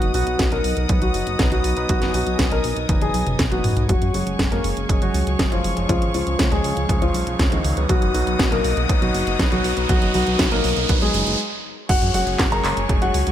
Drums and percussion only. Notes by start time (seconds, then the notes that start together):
0.02 closed hi-hat
0.14 open hi-hat
0.27 closed hi-hat
0.39 kick, snare, closed hi-hat
0.52 closed hi-hat
0.64 open hi-hat
0.77 closed hi-hat
0.89 kick, closed hi-hat
1.02 closed hi-hat
1.14 open hi-hat
1.27 closed hi-hat
1.39 kick, snare, closed hi-hat
1.52 closed hi-hat
1.64 open hi-hat
1.77 closed hi-hat
1.89 kick, closed hi-hat
2.02 snare, closed hi-hat
2.14 open hi-hat
2.27 closed hi-hat
2.39 kick, snare, closed hi-hat
2.52 closed hi-hat
2.64 open hi-hat
2.77 closed hi-hat
2.89 kick, closed hi-hat, high tom
3.02 closed hi-hat, high tom
3.14 open hi-hat
3.27 closed hi-hat, mid tom
3.39 kick, snare, closed hi-hat, mid tom
3.52 closed hi-hat
3.64 mid tom, open hi-hat
3.77 closed hi-hat, mid tom
3.89 kick, closed hi-hat
4.02 closed hi-hat
4.14 open hi-hat
4.27 closed hi-hat
4.39 kick, snare, closed hi-hat
4.52 closed hi-hat
4.64 open hi-hat
4.77 closed hi-hat
4.89 kick, closed hi-hat
5.02 closed hi-hat
5.14 open hi-hat
5.27 closed hi-hat
5.39 kick, snare, closed hi-hat
5.52 closed hi-hat
5.64 open hi-hat
5.77 closed hi-hat
5.89 kick, closed hi-hat
6.02 closed hi-hat
6.14 open hi-hat
6.27 closed hi-hat
6.39 kick, snare, closed hi-hat
6.52 closed hi-hat
6.64 open hi-hat
6.77 closed hi-hat
6.89 kick, closed hi-hat
7.02 closed hi-hat
7.14 open hi-hat
7.27 closed hi-hat
7.39 kick, snare, closed hi-hat
7.52 closed hi-hat
7.64 open hi-hat
7.77 closed hi-hat
7.89 kick, closed hi-hat
8.02 closed hi-hat
8.15 open hi-hat
8.27 closed hi-hat
8.39 kick, snare, closed hi-hat
8.52 closed hi-hat
8.64 open hi-hat
8.77 closed hi-hat
8.89 kick, closed hi-hat
9.02 closed hi-hat
9.14 open hi-hat
9.27 closed hi-hat
9.39 kick, snare, closed hi-hat
9.52 closed hi-hat
9.64 open hi-hat
9.77 closed hi-hat
9.89 kick, closed hi-hat
10.02 closed hi-hat
10.14 open hi-hat
10.27 closed hi-hat
10.39 kick, snare, closed hi-hat
10.52 closed hi-hat
10.64 open hi-hat
10.77 closed hi-hat
10.89 kick, closed hi-hat
11.02 closed hi-hat
11.14 open hi-hat
11.27 closed hi-hat
11.89 kick, closed hi-hat, crash
12.02 closed hi-hat
12.14 open hi-hat
12.27 closed hi-hat
12.39 kick, snare, clap, closed hi-hat
12.52 closed hi-hat
12.65 clap, open hi-hat
12.77 closed hi-hat
12.89 kick, closed hi-hat
13.02 closed hi-hat
13.14 open hi-hat
13.27 closed hi-hat